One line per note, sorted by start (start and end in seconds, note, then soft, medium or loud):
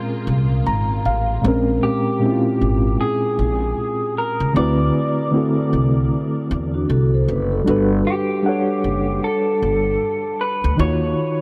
0.00 1.42 A#2 medium
0.00 1.40 G#3 medium
0.00 1.43 G#3 medium
0.00 1.40 A#3 medium
0.00 1.45 C4 medium
0.00 1.45 C#4 medium
0.00 1.40 F4 medium
0.00 1.45 G#4 medium
0.00 0.51 A#4 medium
0.00 0.63 A#4 medium
0.27 0.60 C2 medium
0.66 1.00 G#1 medium
0.66 1.02 A#5 medium
1.05 1.39 A1 medium
1.05 1.42 F5 medium
1.42 1.78 A#1 loud
1.42 2.13 A#2 medium
1.42 2.13 G#3 medium
1.42 2.14 C4 medium
1.46 2.15 C#4 medium
1.46 2.16 A#4 medium
1.83 3.00 G4 medium
2.20 3.60 A#2 medium
2.20 3.60 G#3 medium
2.20 3.61 C4 medium
2.24 3.62 C#4 medium
2.24 2.32 E4 medium
2.32 3.66 F4 medium
2.61 2.95 G#1 medium
3.01 4.18 G#4 loud
3.39 3.72 A#1 medium
4.18 4.56 A#4 medium
4.40 4.53 C#2 medium
4.53 4.89 D2 medium
4.53 5.24 D3 medium
4.53 5.24 A3 medium
4.53 5.25 C4 medium
4.53 5.26 E4 medium
4.53 5.30 D5 loud
4.58 5.26 F#4 medium
4.58 5.27 B4 medium
5.31 6.71 D3 medium
5.31 6.72 A3 medium
5.31 6.72 C4 medium
5.31 6.73 E4 medium
5.36 6.74 F#4 medium
5.36 6.74 A4 medium
5.73 6.06 C2 medium
6.51 6.84 E2 medium
6.74 6.89 D4 medium
6.74 6.88 F#4 medium
6.89 7.23 C2 medium
6.89 7.12 F#4 medium
6.89 7.12 A4 medium
7.14 7.28 A4 medium
7.14 7.28 C5 medium
7.28 7.62 F#1 loud
7.28 7.51 B4 medium
7.52 7.89 F#4 medium
7.52 7.89 A4 medium
7.64 8.01 G1 loud
7.64 8.35 G3 medium
7.64 8.36 D4 medium
7.64 8.37 F#4 medium
7.69 8.38 A4 medium
7.69 8.38 B4 medium
8.07 9.19 G4 medium
8.43 9.83 G3 medium
8.43 9.84 D4 medium
8.43 9.85 F#5 medium
8.47 9.85 A4 medium
8.47 9.86 C#5 medium
8.84 9.18 F#1 medium
9.24 10.44 A4 medium
9.62 9.96 G1 medium
10.41 10.80 B4 loud
10.64 10.77 D2 medium
10.76 11.13 D#2 loud
10.76 11.41 D#3 medium
10.76 11.41 D#4 medium
10.76 11.41 F4 medium
10.76 11.41 C#5 loud
10.81 11.41 F#4 medium
10.81 11.41 C#5 medium